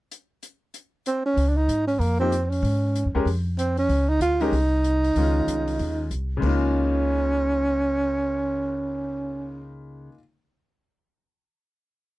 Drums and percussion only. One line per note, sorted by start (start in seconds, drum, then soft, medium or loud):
0.12 closed hi-hat soft
0.43 closed hi-hat soft
0.74 closed hi-hat soft
1.06 closed hi-hat soft
1.37 open hi-hat soft
1.69 closed hi-hat soft
1.88 open hi-hat soft
2.01 open hi-hat soft
2.32 closed hi-hat soft
2.52 open hi-hat soft
2.65 open hi-hat soft
2.95 closed hi-hat soft
3.27 open hi-hat soft
3.59 closed hi-hat soft
3.77 open hi-hat soft
3.89 open hi-hat soft
4.21 closed hi-hat soft
4.41 open hi-hat soft
4.53 open hi-hat soft
4.84 closed hi-hat soft
5.04 open hi-hat soft
5.16 open hi-hat soft
5.48 closed hi-hat soft
5.68 open hi-hat soft
5.79 open hi-hat soft
6.11 closed hi-hat soft
6.42 kick medium
6.42 crash medium